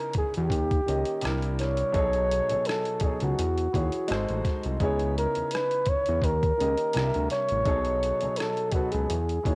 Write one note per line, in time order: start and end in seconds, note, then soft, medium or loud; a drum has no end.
0.00 0.41 C#3 medium
0.00 0.41 B3 medium
0.00 0.42 D#4 medium
0.00 0.42 E4 medium
0.00 0.16 A#4 medium
0.00 0.43 C#5 medium
0.13 0.23 E2 soft
0.13 kick medium
0.13 closed hi-hat medium
0.18 0.35 G#4 medium
0.34 0.50 E2 medium
0.34 1.39 G4 medium
0.34 closed hi-hat soft
0.50 0.81 D#2 medium
0.50 kick medium
0.50 closed hi-hat medium
0.71 kick medium
0.71 closed hi-hat soft
0.86 1.04 C#2 medium
0.86 1.22 D#3 medium
0.86 1.23 A#3 medium
0.86 1.23 C#4 medium
0.86 1.24 G4 medium
0.86 1.24 D#5 medium
0.86 closed hi-hat medium
1.05 closed hi-hat soft
1.21 1.83 C2 medium
1.21 1.89 C3 medium
1.21 1.89 G3 medium
1.21 1.90 D4 medium
1.21 1.90 E4 medium
1.21 1.90 A#4 medium
1.21 cross-stick medium
1.21 closed hi-hat medium
1.42 closed hi-hat soft
1.59 2.69 C#5 medium
1.59 cross-stick soft
1.59 closed hi-hat medium
1.77 closed hi-hat soft
1.92 2.41 B1 loud
1.92 2.44 B2 medium
1.92 2.44 F#3 medium
1.92 2.45 D#4 medium
1.92 2.45 G#4 medium
1.92 2.45 A4 medium
1.92 2.46 C#5 medium
1.92 kick medium
1.92 closed hi-hat medium
2.13 closed hi-hat soft
2.31 closed hi-hat medium
2.48 2.57 C#2 soft
2.48 2.97 B2 medium
2.48 2.97 F#3 medium
2.48 2.98 D#4 medium
2.48 2.99 A4 medium
2.48 2.99 C#5 medium
2.48 2.98 G#5 medium
2.48 closed hi-hat soft
2.65 3.04 A4 medium
2.65 closed hi-hat medium
2.69 cross-stick medium
2.85 closed hi-hat soft
3.00 3.10 C#2 soft
3.00 3.36 B2 medium
3.00 3.37 F#3 medium
3.00 3.37 D#4 medium
3.00 3.37 G#4 medium
3.00 3.22 G#4 medium
3.00 3.38 A4 medium
3.00 kick medium
3.00 closed hi-hat medium
3.04 3.38 C#5 medium
3.20 3.35 C#2 medium
3.20 4.25 F#4 medium
3.20 closed hi-hat soft
3.39 3.68 E2 loud
3.39 closed hi-hat medium
3.58 closed hi-hat soft
3.72 3.90 D#2 medium
3.72 4.08 E3 medium
3.72 4.09 E4 medium
3.72 4.08 F#4 medium
3.72 4.10 G#4 medium
3.72 kick medium
3.72 closed hi-hat medium
3.76 4.10 C#5 medium
3.92 closed hi-hat soft
4.08 4.26 G#1 loud
4.08 4.75 G#3 medium
4.08 4.75 D#4 medium
4.08 4.76 F#4 medium
4.08 4.76 A4 medium
4.08 4.76 C5 medium
4.08 closed hi-hat medium
4.12 cross-stick medium
4.29 4.42 A1 medium
4.29 closed hi-hat soft
4.45 kick medium
4.45 cross-stick soft
4.45 closed hi-hat medium
4.63 4.78 C2 medium
4.63 closed hi-hat soft
4.80 5.27 C#2 loud
4.80 6.13 C#3 medium
4.80 6.13 B3 medium
4.80 6.14 D#4 medium
4.80 6.14 E4 medium
4.80 5.14 G#4 medium
4.80 6.15 C#5 medium
4.80 kick medium
4.80 closed hi-hat soft
4.99 closed hi-hat soft
5.18 5.55 A#4 medium
5.18 closed hi-hat medium
5.35 5.43 E2 soft
5.35 closed hi-hat soft
5.51 5.91 B4 medium
5.51 closed hi-hat medium
5.55 cross-stick medium
5.71 closed hi-hat soft
5.86 5.95 E2 soft
5.86 6.26 C#5 loud
5.86 kick medium
5.86 closed hi-hat medium
6.06 6.21 E2 medium
6.06 closed hi-hat soft
6.22 6.53 D#2 medium
6.22 7.31 A#4 medium
6.22 kick medium
6.22 closed hi-hat medium
6.43 kick medium
6.43 closed hi-hat soft
6.58 6.76 C#2 medium
6.58 6.94 D#3 medium
6.58 6.94 A#3 medium
6.58 6.95 C#4 medium
6.58 6.95 G4 medium
6.58 6.96 D#5 medium
6.58 closed hi-hat medium
6.77 closed hi-hat soft
6.93 7.12 C2 loud
6.93 7.60 C3 medium
6.93 7.61 G3 medium
6.93 7.61 D4 medium
6.93 7.62 A#4 medium
6.93 cross-stick medium
6.93 closed hi-hat medium
6.98 7.03 D#5 medium
7.04 7.65 E5 medium
7.14 7.28 D2 medium
7.14 closed hi-hat soft
7.30 8.39 C#5 medium
7.30 cross-stick soft
7.30 closed hi-hat medium
7.49 7.64 A1 medium
7.49 closed hi-hat soft
7.65 8.12 B1 loud
7.65 8.16 B2 medium
7.65 8.16 F#3 medium
7.65 8.17 D#4 medium
7.65 8.17 G#4 medium
7.65 8.17 A4 medium
7.65 8.18 C#5 medium
7.65 kick medium
7.65 closed hi-hat soft
7.85 closed hi-hat soft
8.03 closed hi-hat medium
8.21 8.29 C#2 soft
8.21 8.69 B2 medium
8.21 8.69 F#3 medium
8.21 8.70 D#4 medium
8.21 8.70 A4 medium
8.21 8.71 C#5 medium
8.21 8.70 G#5 medium
8.21 closed hi-hat soft
8.36 8.74 A4 medium
8.36 closed hi-hat medium
8.40 cross-stick medium
8.57 closed hi-hat soft
8.72 8.81 C#2 soft
8.72 9.08 B2 medium
8.72 9.08 F#3 medium
8.72 9.09 D#4 medium
8.72 8.94 F#4 medium
8.72 9.09 G#4 soft
8.72 9.10 A4 medium
8.72 kick medium
8.72 closed hi-hat medium
8.76 9.10 B4 medium
8.92 9.07 C#2 medium
8.92 9.55 G#4 medium
8.92 closed hi-hat soft
9.10 9.39 E2 medium
9.10 closed hi-hat medium
9.29 closed hi-hat soft
9.43 9.55 D#2 medium
9.43 9.55 E3 medium
9.43 9.55 E4 medium
9.43 9.55 F#4 medium
9.43 9.55 G#4 medium
9.43 9.55 C#5 medium
9.43 kick medium
9.43 closed hi-hat medium